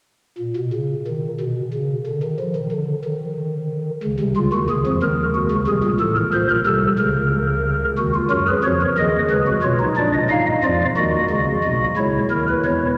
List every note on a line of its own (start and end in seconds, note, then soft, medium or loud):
0.39 0.53 A#2 medium
0.56 0.71 B2 medium
0.73 0.94 C#3 medium
1.08 1.28 D#3 medium
1.40 1.61 B2 medium
1.74 1.94 C#3 medium
2.07 2.21 D3 medium
2.23 2.37 D#3 medium
2.39 2.54 F3 medium
2.56 2.70 D#3 medium
2.72 2.92 D3 medium
3.05 3.90 D#3 medium
4.03 4.18 C#2 medium
4.03 4.18 C#3 medium
4.20 4.34 C2 medium
4.20 4.34 C3 medium
4.36 4.51 C#2 medium
4.36 4.51 C#3 medium
4.36 4.51 F4 medium
4.53 4.67 D#2 medium
4.53 4.67 D#3 medium
4.53 4.67 F#4 medium
4.70 4.84 C#2 medium
4.70 4.84 C#3 medium
4.70 4.90 G#4 medium
4.86 5.00 F2 medium
4.86 5.00 F3 medium
5.02 5.45 D#2 medium
5.02 5.45 D#3 medium
5.02 5.23 A#4 medium
5.35 5.55 F#4 medium
5.51 5.65 C#2 medium
5.51 5.65 C#3 medium
5.67 5.82 C2 medium
5.67 5.82 C3 medium
5.67 5.88 G#4 medium
5.84 5.98 A#1 medium
5.84 5.98 A#2 medium
6.00 6.21 A1 medium
6.00 6.21 A2 medium
6.00 6.14 A4 medium
6.17 6.31 A#4 medium
6.34 6.54 A#1 medium
6.34 6.54 A#2 medium
6.34 6.48 C5 medium
6.50 6.64 A#4 medium
6.67 6.87 C2 medium
6.67 6.87 C3 medium
6.67 6.87 A4 medium
6.99 7.84 C#2 medium
6.99 7.84 C#3 medium
6.99 7.84 A#4 medium
7.98 8.19 D#2 medium
7.98 8.19 D#3 medium
7.98 8.12 F#4 medium
8.14 8.29 F4 medium
8.30 8.51 F#2 medium
8.30 8.51 F#3 medium
8.30 8.45 F#4 medium
8.30 8.45 A#4 medium
8.47 8.62 G#4 medium
8.47 8.62 B4 medium
8.64 8.84 F2 medium
8.64 8.85 F3 medium
8.64 8.78 F#4 medium
8.64 8.85 C#5 medium
8.81 8.95 A#4 medium
8.98 9.18 D#2 medium
8.98 9.18 D#3 medium
8.98 9.41 G#4 medium
8.98 9.18 D#5 medium
9.30 9.51 C#2 medium
9.30 9.51 C#3 medium
9.30 9.51 B4 medium
9.47 9.61 F#4 medium
9.63 9.84 B1 medium
9.63 9.84 B2 medium
9.63 9.78 F4 medium
9.63 9.84 C#5 medium
9.79 9.94 D#4 medium
9.97 10.17 A#1 medium
9.97 10.18 A#2 medium
9.97 10.18 D4 medium
9.97 10.11 D5 medium
10.14 10.28 D#5 medium
10.30 10.51 G#1 medium
10.30 10.51 G#2 medium
10.30 10.51 D#4 medium
10.30 10.45 F5 medium
10.47 10.61 D#5 medium
10.63 10.84 F2 medium
10.63 10.84 F3 medium
10.63 10.84 F4 medium
10.63 10.84 D5 medium
10.97 11.18 D#2 medium
10.97 11.18 D#3 medium
10.97 11.84 F#4 medium
10.97 11.84 D#5 medium
11.30 11.51 C#2 medium
11.30 11.51 C#3 medium
11.64 11.85 B1 medium
11.64 11.85 B2 medium
11.97 12.18 C#2 medium
11.97 12.18 C#3 medium
11.97 12.85 E4 medium
11.97 12.18 C#5 medium
12.31 12.52 D#2 medium
12.31 12.52 D#3 medium
12.31 12.46 A#4 medium
12.48 12.63 B4 medium
12.65 12.86 E2 medium
12.65 12.86 E3 medium
12.65 12.86 C#5 medium